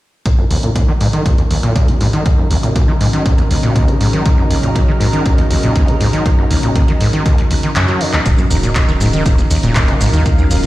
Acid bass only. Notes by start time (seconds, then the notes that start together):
0.26 D#2
0.38 F#2
0.51 D#2
0.63 A#2
0.76 D#2
0.88 D#3
1.01 G#2
1.13 D#3
1.26 D#2
1.38 D#2
1.51 D#2
1.63 A#2
1.76 D#2
1.88 D#3
2.01 G#2
2.13 D#3
2.26 D#2
2.38 F#2
2.51 D#2
2.63 A#2
2.76 D#2
2.88 D#3
3.01 G#2
3.13 D#3
3.25 D#2
3.38 D#2
3.50 D#2
3.63 A#2
3.76 D#2
3.88 D#3
4.01 G#2
4.13 D#3
4.26 D#2
4.38 F#2
4.50 D#2
4.63 A#2
4.75 D#2
4.88 D#3
5.00 G#2
5.13 D#3
5.26 D#2
5.38 D#2
5.51 D#2
5.63 A#2
5.76 D#2
5.88 D#3
6.01 G#2
6.13 D#3
6.26 D#2
6.38 F#2
6.51 D#2
6.63 A#2
6.76 D#2
6.88 D#3
7.01 G#2
7.13 D#3
7.26 D#2
7.38 D#2
7.51 D#2
7.63 D#3
7.76 F#2
7.88 F#3
8.01 C#3
8.13 D#2
8.26 D#2
8.38 F#2
8.51 D#2
8.63 A#2
8.76 D#2
8.88 D#3
9.01 G#2
9.13 D#3
9.26 D#2
9.38 D#2
9.51 D#2
9.63 A#2
9.76 D#2
9.88 D#3
10.01 G#2
10.13 D#3
10.26 D#2
10.38 F#2
10.51 D#2
10.63 A#2